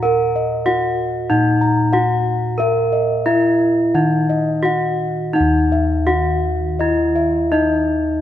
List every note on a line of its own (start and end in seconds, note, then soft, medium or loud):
0.00 0.62 A#2 medium
0.00 0.65 A#4 medium
0.00 0.38 F#5 medium
0.05 1.90 A#4 medium
0.36 0.70 D#5 medium
0.66 0.75 E4 medium
0.66 1.29 F#4 loud
0.66 1.01 F#5 medium
1.30 3.23 A#2 medium
1.30 1.94 D#4 medium
1.30 1.65 F#5 medium
1.61 1.97 A#5 medium
1.93 2.03 E4 soft
1.93 2.59 F#4 medium
1.93 2.30 F#5 medium
2.58 3.26 A#4 medium
2.58 4.61 A#4 medium
2.58 2.97 E5 medium
2.92 3.30 D#5 medium
3.26 3.95 E4 loud
3.26 3.35 E4 soft
3.26 3.65 E5 medium
3.94 6.04 D#3 medium
3.94 4.65 D#4 medium
3.94 4.33 F#5 medium
4.30 4.69 D#5 medium
4.62 4.73 E4 medium
4.62 5.35 F#4 medium
4.62 5.05 F#5 medium
5.33 6.07 D#4 medium
5.33 7.49 D#4 medium
5.33 5.76 F#5 medium
5.40 8.21 D#2 loud
5.72 6.12 E5 medium
6.07 6.17 E4 soft
6.07 6.80 F#4 loud
6.07 6.48 F#5 medium
6.79 7.53 E4 medium
6.79 7.20 D#5 medium
7.16 7.57 E5 medium
7.52 8.21 D#4 medium
7.52 7.61 E4 soft
7.52 7.93 D#5 medium